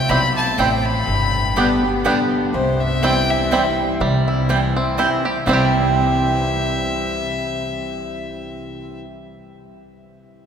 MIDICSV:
0, 0, Header, 1, 6, 480
1, 0, Start_track
1, 0, Key_signature, 0, "major"
1, 0, Tempo, 488202
1, 1058, Time_signature, 3, 2, 24, 8
1, 10285, End_track
2, 0, Start_track
2, 0, Title_t, "Fiddle"
2, 0, Program_c, 0, 110
2, 0, Note_on_c, 0, 79, 99
2, 92, Note_on_c, 0, 83, 114
2, 107, Note_off_c, 0, 79, 0
2, 350, Note_off_c, 0, 83, 0
2, 356, Note_on_c, 0, 81, 92
2, 573, Note_on_c, 0, 79, 82
2, 588, Note_off_c, 0, 81, 0
2, 840, Note_on_c, 0, 83, 106
2, 854, Note_off_c, 0, 79, 0
2, 2018, Note_off_c, 0, 83, 0
2, 2491, Note_on_c, 0, 72, 84
2, 2755, Note_on_c, 0, 76, 98
2, 2769, Note_off_c, 0, 72, 0
2, 2977, Note_on_c, 0, 79, 110
2, 2992, Note_off_c, 0, 76, 0
2, 3247, Note_on_c, 0, 76, 96
2, 3262, Note_off_c, 0, 79, 0
2, 3834, Note_off_c, 0, 76, 0
2, 5382, Note_on_c, 0, 76, 97
2, 8841, Note_off_c, 0, 76, 0
2, 10285, End_track
3, 0, Start_track
3, 0, Title_t, "Mandolin"
3, 0, Program_c, 1, 25
3, 88, Note_on_c, 1, 60, 92
3, 90, Note_on_c, 1, 64, 79
3, 94, Note_on_c, 1, 72, 99
3, 97, Note_on_c, 1, 79, 90
3, 189, Note_off_c, 1, 60, 0
3, 191, Note_off_c, 1, 64, 0
3, 192, Note_off_c, 1, 72, 0
3, 194, Note_off_c, 1, 79, 0
3, 569, Note_on_c, 1, 60, 98
3, 574, Note_on_c, 1, 64, 97
3, 577, Note_on_c, 1, 72, 101
3, 579, Note_on_c, 1, 79, 112
3, 670, Note_off_c, 1, 60, 0
3, 673, Note_off_c, 1, 64, 0
3, 674, Note_off_c, 1, 72, 0
3, 676, Note_off_c, 1, 79, 0
3, 1534, Note_on_c, 1, 59, 77
3, 1537, Note_on_c, 1, 67, 92
3, 1539, Note_on_c, 1, 74, 95
3, 1542, Note_on_c, 1, 79, 97
3, 1633, Note_off_c, 1, 59, 0
3, 1635, Note_off_c, 1, 67, 0
3, 1636, Note_off_c, 1, 74, 0
3, 1637, Note_off_c, 1, 79, 0
3, 2010, Note_on_c, 1, 59, 85
3, 2015, Note_on_c, 1, 67, 101
3, 2017, Note_on_c, 1, 74, 101
3, 2021, Note_on_c, 1, 79, 95
3, 2112, Note_off_c, 1, 59, 0
3, 2114, Note_off_c, 1, 67, 0
3, 2115, Note_off_c, 1, 74, 0
3, 2117, Note_off_c, 1, 79, 0
3, 2976, Note_on_c, 1, 60, 86
3, 2980, Note_on_c, 1, 64, 82
3, 2983, Note_on_c, 1, 72, 92
3, 2986, Note_on_c, 1, 79, 99
3, 3075, Note_off_c, 1, 60, 0
3, 3077, Note_off_c, 1, 64, 0
3, 3079, Note_off_c, 1, 72, 0
3, 3080, Note_off_c, 1, 79, 0
3, 3452, Note_on_c, 1, 60, 92
3, 3458, Note_on_c, 1, 64, 93
3, 3459, Note_on_c, 1, 72, 94
3, 3463, Note_on_c, 1, 79, 105
3, 3553, Note_off_c, 1, 60, 0
3, 3556, Note_off_c, 1, 64, 0
3, 3557, Note_off_c, 1, 72, 0
3, 3558, Note_off_c, 1, 79, 0
3, 4416, Note_on_c, 1, 60, 89
3, 4421, Note_on_c, 1, 64, 84
3, 4424, Note_on_c, 1, 72, 85
3, 4426, Note_on_c, 1, 79, 92
3, 4515, Note_off_c, 1, 60, 0
3, 4518, Note_off_c, 1, 64, 0
3, 4519, Note_off_c, 1, 72, 0
3, 4520, Note_off_c, 1, 79, 0
3, 4895, Note_on_c, 1, 60, 89
3, 4898, Note_on_c, 1, 64, 89
3, 4902, Note_on_c, 1, 72, 103
3, 4905, Note_on_c, 1, 79, 101
3, 4995, Note_off_c, 1, 60, 0
3, 4996, Note_off_c, 1, 64, 0
3, 4998, Note_off_c, 1, 72, 0
3, 5000, Note_off_c, 1, 79, 0
3, 5370, Note_on_c, 1, 60, 84
3, 5381, Note_on_c, 1, 64, 79
3, 5388, Note_on_c, 1, 72, 86
3, 5396, Note_on_c, 1, 79, 92
3, 8869, Note_off_c, 1, 60, 0
3, 8879, Note_off_c, 1, 64, 0
3, 8887, Note_off_c, 1, 72, 0
3, 8895, Note_off_c, 1, 79, 0
3, 10285, End_track
4, 0, Start_track
4, 0, Title_t, "Five-string banjo"
4, 0, Program_c, 2, 105
4, 103, Note_on_c, 2, 55, 66
4, 107, Note_on_c, 2, 60, 66
4, 108, Note_on_c, 2, 64, 69
4, 216, Note_off_c, 2, 55, 0
4, 217, Note_off_c, 2, 60, 0
4, 218, Note_off_c, 2, 64, 0
4, 585, Note_on_c, 2, 55, 70
4, 592, Note_on_c, 2, 60, 69
4, 594, Note_on_c, 2, 64, 71
4, 698, Note_off_c, 2, 55, 0
4, 699, Note_off_c, 2, 60, 0
4, 701, Note_off_c, 2, 64, 0
4, 1545, Note_on_c, 2, 55, 64
4, 1551, Note_on_c, 2, 62, 65
4, 1552, Note_on_c, 2, 59, 66
4, 1658, Note_off_c, 2, 55, 0
4, 1660, Note_off_c, 2, 59, 0
4, 1661, Note_off_c, 2, 62, 0
4, 2024, Note_on_c, 2, 55, 73
4, 2030, Note_on_c, 2, 59, 69
4, 2031, Note_on_c, 2, 62, 72
4, 2138, Note_off_c, 2, 55, 0
4, 2139, Note_off_c, 2, 59, 0
4, 2141, Note_off_c, 2, 62, 0
4, 2987, Note_on_c, 2, 55, 62
4, 2991, Note_on_c, 2, 60, 64
4, 2994, Note_on_c, 2, 64, 69
4, 3099, Note_off_c, 2, 55, 0
4, 3102, Note_off_c, 2, 60, 0
4, 3102, Note_off_c, 2, 64, 0
4, 3468, Note_on_c, 2, 55, 68
4, 3473, Note_on_c, 2, 64, 66
4, 3474, Note_on_c, 2, 60, 70
4, 3580, Note_off_c, 2, 55, 0
4, 3582, Note_off_c, 2, 60, 0
4, 3582, Note_off_c, 2, 64, 0
4, 3944, Note_on_c, 2, 55, 92
4, 4205, Note_on_c, 2, 64, 69
4, 4411, Note_off_c, 2, 55, 0
4, 4423, Note_on_c, 2, 55, 71
4, 4684, Note_on_c, 2, 60, 78
4, 4858, Note_off_c, 2, 64, 0
4, 4906, Note_on_c, 2, 64, 83
4, 5112, Note_off_c, 2, 55, 0
4, 5164, Note_on_c, 2, 67, 75
4, 5337, Note_off_c, 2, 60, 0
4, 5380, Note_off_c, 2, 67, 0
4, 5380, Note_on_c, 2, 55, 84
4, 5383, Note_off_c, 2, 64, 0
4, 5399, Note_on_c, 2, 60, 82
4, 5418, Note_on_c, 2, 64, 82
4, 5440, Note_on_c, 2, 67, 86
4, 8839, Note_off_c, 2, 55, 0
4, 8858, Note_off_c, 2, 60, 0
4, 8878, Note_off_c, 2, 64, 0
4, 8899, Note_off_c, 2, 67, 0
4, 10285, End_track
5, 0, Start_track
5, 0, Title_t, "Steel-string acoustic guitar"
5, 0, Program_c, 3, 25
5, 0, Note_on_c, 3, 48, 92
5, 96, Note_on_c, 3, 47, 88
5, 534, Note_off_c, 3, 48, 0
5, 555, Note_off_c, 3, 47, 0
5, 570, Note_on_c, 3, 45, 81
5, 1033, Note_off_c, 3, 45, 0
5, 1052, Note_on_c, 3, 43, 91
5, 1532, Note_on_c, 3, 50, 90
5, 1538, Note_on_c, 3, 55, 93
5, 1544, Note_on_c, 3, 59, 93
5, 1548, Note_on_c, 3, 67, 106
5, 1788, Note_off_c, 3, 50, 0
5, 1788, Note_off_c, 3, 67, 0
5, 1791, Note_off_c, 3, 55, 0
5, 1794, Note_off_c, 3, 59, 0
5, 1800, Note_on_c, 3, 67, 62
5, 1817, Note_on_c, 3, 59, 53
5, 1972, Note_off_c, 3, 43, 0
5, 2009, Note_off_c, 3, 67, 0
5, 2015, Note_off_c, 3, 59, 0
5, 2016, Note_on_c, 3, 50, 85
5, 2023, Note_on_c, 3, 55, 90
5, 2027, Note_on_c, 3, 59, 86
5, 2033, Note_on_c, 3, 67, 96
5, 2476, Note_off_c, 3, 50, 0
5, 2480, Note_off_c, 3, 55, 0
5, 2482, Note_off_c, 3, 59, 0
5, 2484, Note_off_c, 3, 67, 0
5, 2498, Note_on_c, 3, 48, 93
5, 2972, Note_on_c, 3, 52, 87
5, 2977, Note_on_c, 3, 55, 98
5, 2982, Note_on_c, 3, 60, 91
5, 2986, Note_on_c, 3, 64, 94
5, 3416, Note_off_c, 3, 48, 0
5, 3434, Note_off_c, 3, 52, 0
5, 3437, Note_off_c, 3, 55, 0
5, 3439, Note_off_c, 3, 60, 0
5, 3441, Note_off_c, 3, 64, 0
5, 3457, Note_on_c, 3, 52, 92
5, 3462, Note_on_c, 3, 55, 80
5, 3467, Note_on_c, 3, 60, 89
5, 3471, Note_on_c, 3, 64, 82
5, 3917, Note_off_c, 3, 52, 0
5, 3919, Note_off_c, 3, 55, 0
5, 3922, Note_off_c, 3, 60, 0
5, 3924, Note_off_c, 3, 64, 0
5, 3936, Note_on_c, 3, 48, 89
5, 4414, Note_on_c, 3, 52, 97
5, 4422, Note_on_c, 3, 55, 85
5, 4426, Note_on_c, 3, 60, 92
5, 4430, Note_on_c, 3, 64, 96
5, 4668, Note_off_c, 3, 64, 0
5, 4670, Note_off_c, 3, 52, 0
5, 4674, Note_off_c, 3, 55, 0
5, 4676, Note_off_c, 3, 60, 0
5, 4680, Note_on_c, 3, 64, 59
5, 4697, Note_on_c, 3, 60, 49
5, 4855, Note_off_c, 3, 48, 0
5, 4889, Note_off_c, 3, 64, 0
5, 4889, Note_on_c, 3, 52, 79
5, 4890, Note_off_c, 3, 60, 0
5, 4894, Note_on_c, 3, 55, 91
5, 4902, Note_on_c, 3, 60, 89
5, 4906, Note_on_c, 3, 64, 88
5, 5141, Note_off_c, 3, 64, 0
5, 5147, Note_off_c, 3, 52, 0
5, 5150, Note_off_c, 3, 55, 0
5, 5153, Note_off_c, 3, 60, 0
5, 5153, Note_on_c, 3, 64, 61
5, 5167, Note_on_c, 3, 60, 52
5, 5366, Note_off_c, 3, 64, 0
5, 5366, Note_on_c, 3, 48, 84
5, 5373, Note_off_c, 3, 60, 0
5, 5375, Note_on_c, 3, 52, 80
5, 5382, Note_on_c, 3, 55, 94
5, 5385, Note_on_c, 3, 60, 95
5, 5393, Note_on_c, 3, 64, 99
5, 8865, Note_off_c, 3, 48, 0
5, 8874, Note_off_c, 3, 52, 0
5, 8881, Note_off_c, 3, 55, 0
5, 8884, Note_off_c, 3, 60, 0
5, 8892, Note_off_c, 3, 64, 0
5, 10285, End_track
6, 0, Start_track
6, 0, Title_t, "Upright bass"
6, 0, Program_c, 4, 32
6, 92, Note_on_c, 4, 35, 83
6, 502, Note_off_c, 4, 35, 0
6, 575, Note_on_c, 4, 33, 97
6, 984, Note_off_c, 4, 33, 0
6, 1055, Note_on_c, 4, 31, 90
6, 2007, Note_off_c, 4, 31, 0
6, 2499, Note_on_c, 4, 36, 92
6, 3450, Note_off_c, 4, 36, 0
6, 3939, Note_on_c, 4, 36, 93
6, 4890, Note_off_c, 4, 36, 0
6, 5379, Note_on_c, 4, 36, 100
6, 8839, Note_off_c, 4, 36, 0
6, 10285, End_track
0, 0, End_of_file